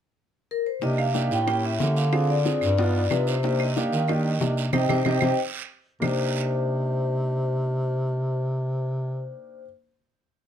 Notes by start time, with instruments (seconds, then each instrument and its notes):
0.51 vibraphone A#4
0.66 vibraphone C5
0.81 bass clarinet C3, grand piano A#3 D4 D#4 G4, vibraphone D#5, high bongo, long guiro
0.98 vibraphone F5, high bongo, claves
1.14 grand piano A#3 D4 D#4 G4, high bongo, short guiro
1.31 bass clarinet A2, vibraphone G5, high bongo, short guiro
1.47 grand piano A#3 C#4 E4 G4, vibraphone G5, high bongo, long guiro, claves
1.64 vibraphone E5, high bongo
1.80 bass clarinet D3, grand piano A#3 C#4 E4 G4, high bongo, low bongo, short guiro
1.96 vibraphone F5, short guiro
2.12 grand piano C4 D4 F4 G#4, high bongo, long guiro, claves
2.30 vibraphone D5, high bongo
2.45 grand piano C4 D4 F4 G#4, high bongo, short guiro
2.61 bass clarinet G2, high bongo, short guiro, claves
2.78 grand piano B3 D4 D#4 F4, high bongo, long guiro
2.95 high bongo
3.10 bass clarinet C3, grand piano B3 D4 D#4 F4, vibraphone B4, high bongo, low bongo, short guiro, claves
3.27 vibraphone C5, short guiro
3.43 grand piano A#3 D4 D#4 G4, high bongo, long guiro
3.59 vibraphone D#5, high bongo, claves
3.76 grand piano A#3 D4 D#4 G4, vibraphone F5, high bongo, short guiro
3.92 bass clarinet D#3, high bongo, short guiro
4.08 grand piano A#3 D4 D#4 G4, vibraphone D#5, high bongo, long guiro, claves
4.25 high bongo
4.40 bass clarinet C3, grand piano A#3 D4 D#4 G4, high bongo, low bongo, short guiro
4.57 short guiro
4.72 bass clarinet C3, grand piano C4 D#4 G4, vibraphone C5 D#5 G5, low bongo, long guiro, claves
4.88 bass clarinet C3, grand piano C4 D#4 G4, vibraphone C5 D#5 G5, low bongo, long guiro, claves
5.05 bass clarinet C3, grand piano C4 D#4 G4, vibraphone C5 D#5 G5, low bongo, long guiro, claves
5.21 bass clarinet C3, grand piano C4 D#4 G4, vibraphone C5 D#5 G5, low bongo, long guiro, claves
6.00 bass clarinet C3, grand piano A#3 D4 D#4 G4, vibraphone C5, low bongo, long guiro, claves